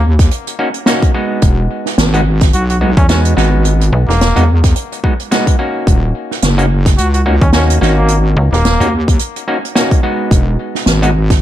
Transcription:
Already playing: D#2
0.19 kick, snare, closed hi-hat
0.31 closed hi-hat
0.47 closed hi-hat
0.59 A#3 C#4 D#4 F#4
0.74 closed hi-hat
0.86 A#3 C#4 D#4 F#4, snare, closed hi-hat
1.02 kick, closed hi-hat
1.14 G#3 B3 D#4 F#4
1.42 E1, kick, closed hi-hat
1.86 snare
1.98 G#1, snare, closed hi-hat
2.14 G#3 B3 D#4 F#4, closed hi-hat
2.41 kick, snare, closed hi-hat
2.53 B1 F#4, closed hi-hat
2.69 F#4, closed hi-hat
2.81 G#3 B3 D#4 F#4
2.97 E2 C#4, kick, closed hi-hat
3.09 G#3 B3 C#4 D#4 F#4, snare, closed hi-hat
3.25 closed hi-hat
3.37 G#1 G#3 B3 D#4 F#4, snare
3.65 closed hi-hat
3.81 closed hi-hat
3.93 B1
4.08 E1 A#3, snare
4.21 snare, closed hi-hat
4.36 E2 G#3 B3 D#4 F#4, closed hi-hat
4.64 kick, snare, closed hi-hat
4.76 closed hi-hat
4.92 closed hi-hat
5.04 G#3 B3 D#4 F#4, kick
5.20 closed hi-hat
5.31 G#3 B3 D#4 F#4, snare, closed hi-hat
5.47 kick, closed hi-hat
5.59 A#3 C#4 D#4 F#4
5.87 D#1, kick, closed hi-hat
6.31 snare
6.42 F#1, snare, closed hi-hat
6.58 A#3 C#4 D#4 F#4, closed hi-hat
6.86 kick, snare, closed hi-hat
6.98 C#2 F#4, closed hi-hat
7.14 F#4, closed hi-hat
7.26 A#3 C#4 D#4 F#4
7.41 D#2 C#4, kick, closed hi-hat
7.53 A#3 C#4 D#4 F#4, snare, closed hi-hat
7.70 closed hi-hat
7.81 G#1 A#3 C#4 D#4 F#4, snare
7.97 A#3
8.08 closed hi-hat
8.37 C#2
8.53 D#1 A#3, snare
8.65 snare, closed hi-hat
8.80 D#2 A#3 C#4 D#4 F#4, closed hi-hat
9.08 kick, closed hi-hat
9.19 closed hi-hat
9.36 closed hi-hat
9.48 A#3 C#4 D#4 F#4
9.65 closed hi-hat
9.75 A#3 C#4 D#4 F#4, snare, closed hi-hat
9.91 kick, closed hi-hat
10.03 G#3 B3 D#4 F#4
10.31 E1, kick, closed hi-hat
10.75 snare
10.86 G#1, snare, closed hi-hat
11.02 G#3 B3 D#4 F#4, closed hi-hat
11.30 kick, snare, closed hi-hat

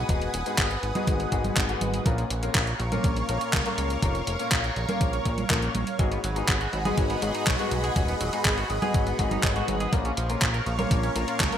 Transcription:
Already playing: B4 F#5 G#5 D#6
0.09 D#1 G#2 B3 D#4 F#4 G#4, kick, closed hi-hat
0.22 closed hi-hat
0.34 D#1, closed hi-hat
0.46 G#2 B3 D#4 F#4 G#4, closed hi-hat
0.58 G#1, kick, clap, closed hi-hat
0.71 closed hi-hat
0.83 G#1, closed hi-hat
0.95 G#2 B3 D#4 F#4 G#4, closed hi-hat, high conga
1.07 G#1, kick, closed hi-hat
1.20 closed hi-hat
1.32 G#1 G#2 B3 D#4 F#4 G#4, kick, closed hi-hat
1.44 closed hi-hat, high conga
1.57 G#1, kick, clap, closed hi-hat
1.69 G#2 B3 D#4 F#4 G#4, closed hi-hat
1.81 G#1, closed hi-hat, high conga
1.94 closed hi-hat
2.06 A#1 A#2 A#3 C#4 F4 A#4 C#5 F5 C#6, kick, closed hi-hat
2.18 closed hi-hat
2.30 A#1, closed hi-hat
2.43 A#2 A#3 C#4 F4 A#4, closed hi-hat
2.55 A#1, kick, clap, closed hi-hat
2.67 closed hi-hat
2.80 A#1, closed hi-hat
2.92 A#2 A#3 C#4 F4 A#4, closed hi-hat, high conga
3.04 A#1, kick, closed hi-hat
3.17 closed hi-hat
3.29 A#1 A#2 A#3 C#4 F4 A#4, closed hi-hat
3.41 closed hi-hat
3.53 C#2, kick, clap, closed hi-hat, high conga
3.66 A#2 A#3 C#4 F4 A#4, closed hi-hat
3.78 C#2, closed hi-hat
3.90 closed hi-hat
4.02 F1 A#2 A#3 C#4 F4 A#4, kick, closed hi-hat
4.15 closed hi-hat
4.27 F1, closed hi-hat
4.39 A#2 A#3 C#4 F4 A#4, closed hi-hat
4.52 A#1, kick, clap, closed hi-hat
4.64 closed hi-hat
4.76 A#1, closed hi-hat
4.89 A#2 A#3 C#4 F4 A#4, closed hi-hat, high conga
5.01 A#1, kick, closed hi-hat
5.13 closed hi-hat
5.25 A#1, kick, closed hi-hat
5.38 closed hi-hat, high conga
5.50 A#1 A#2 A#3 C#4 F4 A#4, kick, clap, closed hi-hat
5.62 closed hi-hat
5.75 A#1, closed hi-hat, high conga
5.87 closed hi-hat
5.99 G#1 G#2 F#3 B3 D#4 F#4 G#4 D#5 F#5 B5, kick, closed hi-hat
6.12 B3, closed hi-hat
6.24 G#1 F#3, closed hi-hat
6.36 G#2 B3 D#4 F#4 G#4, closed hi-hat
6.48 G#1 F#3, kick, clap, closed hi-hat
6.61 F#4, closed hi-hat
6.73 G#1 F#3, closed hi-hat
6.85 G#2 B3 D#4 F#4 G#4, closed hi-hat, high conga
6.98 G#1 F#3, kick, closed hi-hat
7.10 B3, closed hi-hat
7.22 G#1 G#2 F#3 B3 D#4 F#4 G#4, closed hi-hat
7.34 D#4, closed hi-hat
7.47 B1 F#3, kick, clap, closed hi-hat, high conga
7.59 G#2 B3 D#4 F#4 G#4, closed hi-hat
7.71 B1 F#3, closed hi-hat
7.84 G#4, closed hi-hat
7.96 D#1 G#2 F#3 B3 D#4 F#4 G#4, kick, closed hi-hat
8.08 B3, closed hi-hat
8.21 D#1 F#3, closed hi-hat
8.33 G#2 B3 D#4 F#4 G#4, closed hi-hat
8.45 G#1 F#3, kick, clap, closed hi-hat
8.58 F#4, closed hi-hat
8.70 G#1 F#3, closed hi-hat
8.82 G#2 B3 D#4 F#4 G#4, closed hi-hat, high conga
8.94 G#1 F#3, kick, closed hi-hat
9.07 B3, closed hi-hat
9.19 G#1 G#2 F#3 B3 D#4 F#4 G#4, kick, closed hi-hat
9.31 D#4, closed hi-hat, high conga
9.43 G#1 F#3, kick, clap, closed hi-hat
9.56 G#2 B3 D#4 F#4 G#4, closed hi-hat
9.68 G#1 F#3, closed hi-hat, high conga
9.80 G#4, closed hi-hat
9.93 A#1 A#2 F3 A#3 C#4 F4 A#4 C#5 F5 C#6, kick, closed hi-hat
10.05 C#4, closed hi-hat
10.17 A#1 F3, closed hi-hat
10.29 A#2 A#3 C#4 F4 A#4, closed hi-hat
10.42 A#1 F3, kick, clap, closed hi-hat
10.54 A#4, closed hi-hat
10.66 A#1 F3, closed hi-hat
10.79 A#2 A#3 C#4 F4 A#4 C#5, closed hi-hat, high conga
10.91 A#1 F3, kick, closed hi-hat
11.03 C#4, closed hi-hat
11.16 A#1 A#2 F3 A#3 C#4 F4 A#4, closed hi-hat
11.28 F4, closed hi-hat
11.40 C#2 F3, kick, clap, closed hi-hat, high conga
11.52 A#2 A#3 C#4 F4 A#4, closed hi-hat

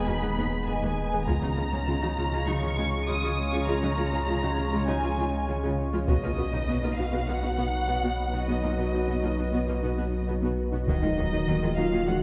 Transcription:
Already playing: D#1 G#3 B3 D#4 D#5
0.07 D#2 A#3 F#4 G#4 B5
0.22 D#2 B3 G#4
0.38 D#2 G#3 B3 G#4
0.67 D#2 B3 D#4 G#4 G#5
0.82 D#2 G#3 B3 G#4
1.12 D#2 B3 G#4
1.27 C#2 C#3 G#3 C#4 F4 C#5 A#5, taiko
1.42 C#3 F3 F#3 D#4
1.57 C#3 G#3 A#3 F4
1.72 C#3 F3 G#3 C#4
1.87 C#3 G#3 F4
2.02 C#3 F3 F#3 D#4
2.17 C#3 F3 G#3 F4
2.32 C#3 G#3 F4
2.47 C#3 F#3 A#3 D#4 C#6
2.62 C#3 F3 G#3 F4
2.77 C#3 G#3 F4
3.07 C#3 G#3 F4 D#6
3.22 C#3 G#3 F4
3.52 C#3 F3 G#3 F4 C#6
3.67 C#3 G#3 F4 A#5
3.82 C#3 F3 F#3 D#4
3.98 C#3 G#3 A#3 F4
4.13 C#3 F3 G#3 C#4
4.28 C#3 G#3 F4
4.43 C#3 F3 F#3 D#4
4.57 C#3 F3 G#3 F4
4.73 C#3 G#3 F4
4.87 C#3 F#3 A#3 D#4 G#5
5.03 C#3 F3 G#3 F4
5.18 C#3 G#3 F4
5.48 C#3 G#3 F4
5.63 C#3 G#3 F4
5.93 C#3 F3 G#3 F4
6.08 B1 B2 F#3 B3 D#4 F#4 B4 D#5, taiko
6.23 B2 A#3 D#4 F4
6.38 B2 B3 F#4 B4
6.53 B2 F#3 D#4 F#4
6.68 B2 B3 F#4
6.83 B2 A#3 D#4 F4
6.97 B2 B3 D#4 F#4 F5
7.13 B2 B3 F#4
7.28 B2 A#3 F4 B4 F#5
7.43 B2 B3 D#4 F#4
7.57 B2 B3 F#4
7.88 B2 B3 F#4
8.02 B2 B3 F#4
8.33 B2 B3 D#4 F#4
8.48 B2 B3 F#4 D#5
8.62 B2 A#3 D#4 F4
8.78 B2 B3 F#4 B4
8.93 B2 F#3 D#4 F#4
9.08 B2 B3 F#4
9.22 B2 A#3 D#4 F4
9.37 B2 B3 D#4 F#4
9.52 B2 B3 F#4
9.67 B2 A#3 F4 B4
9.83 B2 B3 D#4 F#4
9.97 B2 B3 F#4
10.28 B2 B3 F#4
10.42 B2 B3 F#4
10.72 B2 B3 D#4 F#4
10.87 D#1 D#2 D#3 F#3 A#3 D#4 F#4 A#4 D#5, taiko
11.03 D#3 F#3 G#3 F4
11.18 D#2 D#3 A#3 D#4 F#4
11.33 D#3 F#3 A#3 D#4
11.47 D#2 D#3 A#3 F#4
11.63 D#3 F#3 G#3 F4
11.77 D#2 D#3 F#3 A#3 F4 F#4 F5
11.92 D#3 A#3 F#4
12.08 D#2 D#3 G#3 D#4 F4 F#4 F#5

